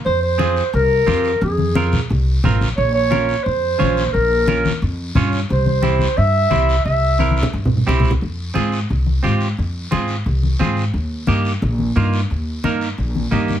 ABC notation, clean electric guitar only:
X:1
M:4/4
L:1/8
Q:1/4=176
K:Fm
V:1 name="Clean electric guitar"
z2 [CFA] z3 [CFG] z | z2 [CFB] z3 [CFB] z | z2 [DFB] z3 [DFd] z | z2 [DFB] z3 [DFd] z |
z2 [C=EG] z3 [CEG] z | z2 [C=EB] z3 [CEG] z | z2 [CFA] z3 [CFG] z | z2 [CFA] z3 [CFA] z |
z2 [B,EG] z3 [B,EF] z | z2 [B,EB] z3 [B,EG] z |]